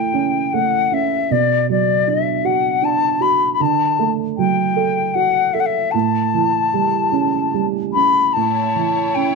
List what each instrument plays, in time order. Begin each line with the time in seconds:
Already playing: upright piano A2 E3 A3, flute G5
0.14 upright piano C#4
0.54 upright piano A3, flute F#5
0.92 upright piano C#4, flute E5
1.31 upright piano B2, flute D5
1.69 upright piano F#3, flute D5
2.07 upright piano D4, flute E5
2.45 upright piano F#4, flute F#5
2.82 upright piano D4, flute A5
3.20 upright piano F#4, flute B5
3.53 flute B5
3.60 upright piano D3, flute A5
3.99 upright piano A3
4.38 upright piano F#3, flute G5
4.76 upright piano A4
5.14 upright piano F#4, flute F#5
5.54 upright piano A4, flute E5
5.60 flute F#5
5.66 flute E5
5.91 upright piano A2, flute A5
6.34 upright piano E3
6.74 upright piano G3
7.12 upright piano C#4
7.54 upright piano G3
7.93 upright piano C#4, flute B5
8.33 upright piano A2, string section A3 E4 C#5, flute A5
8.76 upright piano E3
9.15 upright piano C#4, flute G5